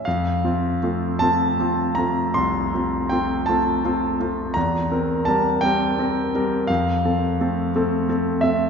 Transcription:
\new Staff \with { instrumentName = "Grand piano" } { \time 12/8 \key f \major \tempo 4. = 56 << { f''4. a''4 bes''8 c'''4 g''8 a''4. | bes''4 a''8 g''4. f''2 r8 e''8 | } \\ { f,8 <c' f'>8 <a c' f'>8 <a c' f'>8 <c' f'>8 <a c' f'>8 c,8 <c' f'>8 <a c' f'>8 <a c' f'>8 <c' f'>8 <a c' f'>8 | e,8 <c' bes'>8 <g c' bes'>8 <g c' bes'>8 <c' bes'>8 <g c' bes'>8 f,8 <c' a'>8 <a c' a'>8 <a c' a'>8 <c' a'>8 <a c' a'>8 | } >> }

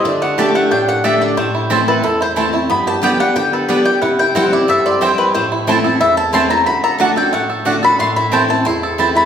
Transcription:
<<
  \new Staff \with { instrumentName = "Mandolin" } { \time 4/4 \key a \dorian \tempo 4 = 181 d''8 fis''8 a''8 fis''8 g''8 fis''8 e''8 d''8 | c''4. b'8 a'8 c''8 r4 | b''8 a''8 g''8 fis''8 g''8 b'8 d''8 g''8 | fis''8 g''8 fis''8 d''8 e''8 d''8 c''8 b'8 |
c''8 r4. e''8 a''8 c'''8 bes''8 | b''8 bes''8 a''8 g''8 fis''8 r4 b''8 | c'''8 b''8 g''8 a''8 c'''4. b''8 | }
  \new Staff \with { instrumentName = "Mandolin" } { \time 4/4 \key a \dorian r4 <a g' d'' g''>8 r4. <a g' d'' g''>8 r8 | r4 <c' e' c'' a''>8 r4. <c' e' c'' a''>8 r8 | r4 <b g' d'' g''>8 r4. <b g' d'' g''>8 r8 | r4 <c' e' c'' g''>8 r4. <c' e' c'' g''>8 r8 |
r4 <c' e' c'' a''>8 r4. <c' e' c'' a''>8 r8 | r4 <a fis' d'' fis''>8 r4. <a fis' d'' fis''>8 r8 | r4 <c' e' c'' a''>8 r4. <c' e' c'' a''>8 r8 | }
  \new Staff \with { instrumentName = "Five-string banjo" } { \time 4/4 \key a \dorian d'8 a8 g'8 a8 d'8 g'8 a'8 d'8 | a8 e'8 e'8 a'8 e'8 e'8 a8 e'8 | b8 g'8 b8 d'8 g'8 a'8 d'8 g'8 | e'8 e'8 c'8 e'8 a'8 c'8 e'8 c'8 |
a8 e'8 e'8 a'8 e'8 e'8 a8 e'8 | fis'8 a'8 fis'8 a'8 a8 a'8 d'8 a'8 | a8 e'8 a8 e'8 e'8 a'8 e'8 a8 | }
  \new Staff \with { instrumentName = "Steel-string acoustic guitar" } { \time 4/4 \key a \dorian << { r4 <d a d' g'>4 r4 <d a d' g'>4 | r4 <e a c' e'>4 r4 <e a c' e'>8 <c' e'>8 | r4 <d g b g'>8 <b g'>8 r4 <d g b g'>8 <b g'>8 | r4 <e g c' e'>8 <c' e'>8 r4 <e g c' e'>4 |
r4 <e a c' e'>8 <c' e'>8 r4 <e a c' e'>8 <c' e'>8 | r4 <d a d' fis'>8 <d' fis'>8 r4 <d a d' fis'>8 <d' fis'>8 | r4 <e a c' e'>8 <c' e'>8 r4 <e a c' e'>8 <c' e'>8 | } \\ { d2 a,2 | a,2 e,2 | g,2 d2 | c2 g,2 |
a,2 e,2 | d2 a,2 | a,2 e,2 | } >> }
>>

